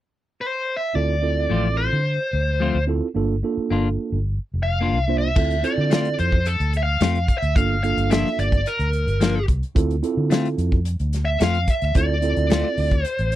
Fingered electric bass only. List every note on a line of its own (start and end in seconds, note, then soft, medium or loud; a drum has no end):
0.95 1.46 D2 medium
1.51 1.88 A1 medium
1.93 2.17 D3 medium
2.33 2.71 D2 medium
2.74 3.00 D2 medium
3.16 3.41 G1 medium
3.57 muted fingered electric bass stroke soft
3.71 3.96 G1 medium
4.12 4.37 G1 medium
4.54 4.95 F1 medium
4.95 5.33 C2 medium
5.36 5.61 D2 medium
5.78 6.15 D3 medium
6.19 6.57 F2 medium
6.60 6.97 D2 medium
7.01 7.26 F2 medium
7.42 7.55 D2 medium
7.56 7.94 G1 medium
7.97 8.22 G1 medium
8.39 8.64 G1 medium
8.79 9.05 D2 medium
9.07 9.44 G1 medium
9.49 9.61 C2 medium
9.76 10.01 D2 medium
10.17 10.55 D3 medium
10.58 10.96 F2 medium
11.00 11.37 D2 medium
11.41 11.66 F2 medium
11.82 11.94 D2 medium
11.95 12.33 D2 medium
12.37 12.62 D2 medium
12.78 13.03 D2 medium
13.19 13.36 A1 medium